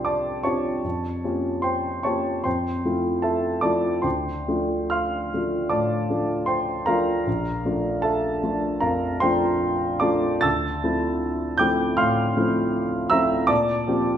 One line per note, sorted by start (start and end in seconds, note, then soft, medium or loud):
0.00 0.87 C2 soft
0.00 0.45 C4 soft
0.00 0.45 D4 soft
0.00 0.46 F4 soft
0.00 0.47 G4 soft
0.00 0.86 A4 soft
0.00 0.86 C5 soft
0.00 0.06 D5 soft
0.00 0.87 E5 soft
0.00 0.86 G5 soft
0.00 0.06 A5 medium
0.00 0.87 C6 medium
0.05 0.42 D5 soft
0.05 0.42 A5 soft
0.05 0.44 D6 medium
0.43 0.80 C4 soft
0.43 0.80 D4 soft
0.43 0.81 F4 soft
0.43 0.81 G4 soft
0.43 1.60 C#5 soft
0.43 1.60 A5 soft
0.43 1.64 C#6 medium
0.84 1.23 F2 soft
1.24 2.02 A#3 soft
1.24 2.02 C#4 soft
1.24 2.02 F4 soft
1.24 2.02 G4 soft
1.62 2.02 C5 soft
1.62 2.02 G5 soft
1.62 2.04 C6 medium
2.03 2.41 A#3 soft
2.03 2.42 C#4 soft
2.03 2.42 F4 soft
2.03 2.42 G4 soft
2.03 2.42 C#5 soft
2.03 2.42 A5 soft
2.03 2.44 C#6 medium
2.44 2.84 F2 soft
2.44 3.20 C5 soft
2.44 3.20 G5 soft
2.44 3.23 C6 medium
2.85 3.60 F3 soft
2.85 3.60 A3 soft
2.85 3.60 E4 soft
2.85 3.60 F4 soft
3.22 3.61 A4 soft
3.22 3.61 E5 soft
3.22 3.61 A5 medium
3.61 4.00 F3 soft
3.61 4.00 A3 soft
3.61 4.01 E4 soft
3.61 4.01 F4 soft
3.61 4.01 D5 soft
3.61 4.01 A5 soft
3.61 4.03 D6 medium
4.02 4.46 D2 soft
4.02 4.88 C5 soft
4.02 4.88 G5 soft
4.02 4.90 C6 soft
4.48 5.29 F3 soft
4.48 5.30 A3 soft
4.48 5.30 D4 soft
4.48 5.30 F4 soft
4.90 5.67 F5 medium
4.90 5.67 C6 soft
4.90 5.71 F6 medium
5.34 5.68 F3 soft
5.34 5.69 A3 soft
5.34 5.69 D4 soft
5.34 5.69 F4 soft
5.69 6.09 A2 soft
5.69 6.44 D5 soft
5.69 6.44 A5 soft
5.69 6.48 D6 medium
6.10 6.83 F3 soft
6.10 6.84 A3 soft
6.10 6.84 D4 soft
6.10 6.84 F4 soft
6.46 6.84 C5 soft
6.46 6.84 G5 soft
6.46 6.86 C6 medium
6.86 7.23 F3 soft
6.86 7.23 A3 soft
6.86 7.23 D4 soft
6.86 7.24 F4 soft
6.86 8.00 A#4 medium
6.86 8.01 F5 medium
6.86 8.04 A#5 medium
7.27 7.65 A#1 soft
7.65 8.39 F3 soft
7.65 8.39 A3 soft
7.65 8.39 D4 soft
7.65 8.40 F4 soft
8.02 8.78 A4 soft
8.02 8.78 E5 soft
8.02 8.82 A5 medium
8.43 8.79 F3 soft
8.43 8.79 A3 soft
8.43 8.79 D4 soft
8.43 8.79 F4 soft
8.80 9.20 F2 soft
8.80 9.18 A#4 soft
8.80 9.19 F5 soft
8.80 9.21 A#5 medium
9.20 9.98 F3 soft
9.20 9.98 A3 soft
9.20 9.98 D4 soft
9.20 9.99 F4 soft
9.20 9.98 C5 medium
9.20 9.98 G5 medium
9.20 10.01 C6 medium
10.00 10.40 F3 soft
10.00 10.41 A3 soft
10.00 10.41 D4 soft
10.00 10.41 F4 soft
10.00 10.41 D5 soft
10.00 10.41 A5 soft
10.00 10.44 D6 medium
10.41 10.83 D2 soft
10.41 11.56 A5 medium
10.41 11.56 E6 medium
10.41 11.59 A6 medium
10.84 11.56 F3 soft
10.84 11.56 A3 soft
10.84 11.57 C4 soft
10.84 11.57 E4 soft
11.58 11.95 F3 soft
11.58 11.95 A3 soft
11.58 11.96 C4 soft
11.58 11.96 E4 soft
11.58 11.96 G5 medium
11.58 11.96 D6 medium
11.58 11.98 G6 medium
11.97 12.36 A2 soft
11.97 13.08 F5 medium
11.97 13.08 C6 medium
11.97 13.12 F6 medium
12.37 13.09 F3 soft
12.37 13.09 A3 soft
12.37 13.09 C4 soft
12.37 13.09 E4 soft
13.10 13.46 F3 soft
13.10 13.46 A3 soft
13.10 13.47 C4 soft
13.10 13.47 E4 soft
13.10 13.47 E5 medium
13.10 13.47 A#5 medium
13.10 13.49 E6 medium
13.47 13.87 A#2 soft
13.47 14.17 D5 medium
13.47 14.17 A5 medium
13.47 14.17 D6 medium
13.87 14.17 F3 soft
13.87 14.17 A#3 soft
13.87 14.17 C4 soft
13.87 14.17 G4 soft